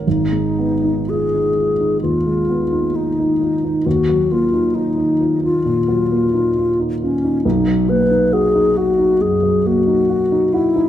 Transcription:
X:1
M:4/4
L:1/16
Q:1/4=67
K:D#phr
V:1 name="Alto flute"
D4 G4 ^E4 D4 | F2 ^E2 D3 E6- E C2 | D2 B2 G2 F2 G2 F4 E2 |]
V:2 name="Grand piano"
G,,, G, B, D ^E D E D D,, G, B, D E D E D | D,, F, A, D ^E D E D A,, F, A, D E D E D | B,,, F, A, D F D F D F,, F, A, D F D F D |]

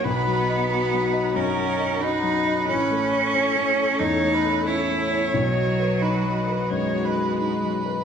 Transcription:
X:1
M:4/4
L:1/8
Q:1/4=90
K:B
V:1 name="Viola"
B2 B2 A2 B2- | B2 c2 c B c c- | c2 B2 c B B2 |]
V:2 name="String section"
[DFf]8 | [C=Ac]8 | [B,Fd]8 |]
V:3 name="Cello"
B,4 C2 D2 | C4 D2 E2 | F,4 G,4 |]
V:4 name="Grand piano"
(3B,,, F, d (3F F, d (3F,, F, d (3F F, d | (3=A,,, =A, c (3C A, c (3E,, A, c (3C A, c | (3B,,, F, B (3D F, B (3F,, F, B (3D F, B |]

